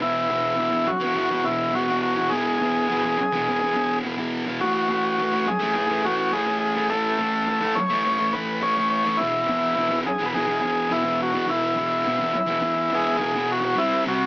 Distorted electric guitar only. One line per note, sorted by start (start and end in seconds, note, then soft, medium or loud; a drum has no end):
0.00 0.28 E2 medium
0.00 0.29 B2 medium
0.00 0.31 E3 medium
0.29 0.56 E2 medium
0.29 0.57 B2 medium
0.29 0.59 E3 medium
0.56 0.86 E2 medium
0.56 0.72 B2 loud
0.56 0.71 E3 medium
0.71 0.86 B2 medium
0.71 0.87 E3 medium
0.86 muted distorted electric guitar stroke soft
1.00 1.15 B2 medium
1.00 1.17 E3 medium
1.15 1.43 E2 medium
1.15 1.31 B2 medium
1.15 1.30 E3 medium
1.30 1.45 B2 medium
1.30 1.47 E3 medium
1.44 1.71 E2 medium
1.44 1.73 B2 medium
1.44 1.75 E3 medium
1.72 2.16 E2 medium
1.72 1.89 B2 loud
1.72 1.87 E3 loud
1.88 2.18 B2 medium
1.88 2.15 E3 medium
2.16 2.30 B2 medium
2.16 2.32 E3 medium
2.30 2.58 E2 medium
2.30 2.60 B2 medium
2.30 2.62 E3 medium
2.59 2.87 E2 medium
2.59 2.88 B2 medium
2.59 2.91 E3 medium
2.88 3.17 E2 medium
2.88 3.05 B2 loud
2.88 3.02 E3 loud
3.03 3.17 B2 medium
3.03 3.18 E3 medium
3.18 muted distorted electric guitar stroke soft
3.32 3.48 B2 medium
3.32 3.50 E3 medium
3.47 3.73 E2 medium
3.47 3.62 B2 medium
3.47 3.60 E3 medium
3.61 3.75 B2 medium
3.61 3.77 E3 medium
3.74 4.02 E2 medium
3.74 4.03 B2 medium
3.74 4.06 E3 medium
4.03 4.46 E2 medium
4.03 4.19 B2 medium
4.03 4.17 E3 loud
4.18 4.47 B2 soft
4.18 4.45 E3 medium
4.46 4.60 B2 medium
4.46 4.62 E3 medium
4.61 4.88 A2 medium
4.61 4.90 E3 medium
4.61 4.91 A3 medium
4.89 5.18 A2 medium
4.89 5.19 E3 medium
4.89 5.21 A3 medium
5.18 5.46 A2 medium
5.18 5.34 E3 medium
5.18 5.31 A3 loud
5.31 5.46 E3 medium
5.31 5.46 A3 medium
5.46 muted distorted electric guitar stroke soft
5.59 5.75 E3 medium
5.59 5.75 A3 medium
5.73 6.02 A2 medium
5.73 5.90 E3 medium
5.73 5.86 A3 medium
5.88 6.04 E3 medium
5.88 6.04 A3 medium
6.03 6.31 A2 medium
6.03 6.33 E3 medium
6.03 6.34 A3 medium
6.32 6.75 A2 medium
6.32 6.49 E3 loud
6.32 6.45 A3 loud
6.46 6.78 E3 medium
6.46 6.74 A3 medium
6.75 6.91 E3 medium
6.75 6.91 A3 medium
6.90 7.17 A2 medium
6.90 7.19 E3 medium
6.90 7.20 A3 loud
7.19 7.46 A2 medium
7.19 7.48 E3 medium
7.19 7.48 A3 medium
7.47 7.75 A2 medium
7.47 7.63 E3 medium
7.47 7.60 A3 loud
7.61 7.77 E3 medium
7.61 7.76 A3 medium
7.76 muted distorted electric guitar stroke soft
7.89 8.06 E3 medium
7.89 8.06 A3 medium
8.04 8.32 A2 medium
8.04 8.20 E3 medium
8.04 8.17 A3 medium
8.19 8.34 E3 medium
8.19 8.34 A3 medium
8.33 8.60 A2 medium
8.33 8.62 E3 medium
8.33 8.63 A3 medium
8.62 9.05 A2 medium
8.62 8.79 E3 loud
8.62 8.75 A3 loud
8.76 9.07 E3 medium
8.76 9.04 A3 medium
9.05 9.22 E3 medium
9.05 9.17 A3 medium
9.19 9.46 E2 medium
9.19 9.48 B2 medium
9.19 9.49 E3 medium
9.47 9.75 E2 medium
9.47 9.75 B2 medium
9.47 9.77 E3 medium
9.75 10.05 E2 medium
9.75 9.92 B2 medium
9.75 9.89 E3 loud
9.90 10.05 B2 medium
9.90 10.06 E3 medium
10.05 muted distorted electric guitar stroke soft
10.19 10.34 B2 medium
10.19 10.36 E3 medium
10.33 10.60 E2 medium
10.33 10.48 B2 medium
10.33 10.46 E3 medium
10.46 10.62 B2 medium
10.46 10.64 E3 medium
10.61 10.87 E2 medium
10.61 10.89 B2 medium
10.61 10.91 E3 medium
10.89 11.33 E2 medium
10.89 11.04 B2 loud
10.89 11.03 E3 loud
11.03 11.34 B2 medium
11.03 11.32 E3 medium
11.33 11.46 B2 medium
11.33 11.48 E3 medium
11.46 11.74 E2 medium
11.46 11.76 B2 loud
11.46 11.77 E3 medium
11.75 12.03 E2 medium
11.75 12.05 B2 medium
11.75 12.06 E3 medium
12.04 12.32 E2 medium
12.04 12.21 B2 medium
12.04 12.17 E3 medium
12.19 12.33 B2 medium
12.19 12.33 E3 medium
12.34 muted distorted electric guitar stroke soft
12.46 12.61 B2 medium
12.46 12.62 E3 medium
12.60 12.89 E2 medium
12.60 12.76 B2 medium
12.60 12.74 E3 medium
12.75 12.91 B2 medium
12.75 12.92 E3 medium
12.90 13.17 E2 medium
12.90 13.19 B2 medium
12.90 13.20 E3 medium
13.18 13.62 E2 medium
13.18 13.35 B2 loud
13.18 13.33 E3 loud
13.34 13.64 B2 medium
13.34 13.61 E3 medium
13.62 13.76 B2 medium
13.62 13.75 E3 medium
13.76 14.04 C3 medium
13.76 14.05 G3 loud
13.76 14.06 C4 loud
14.05 14.26 C3 medium
14.05 14.26 G3 medium
14.05 14.26 C4 loud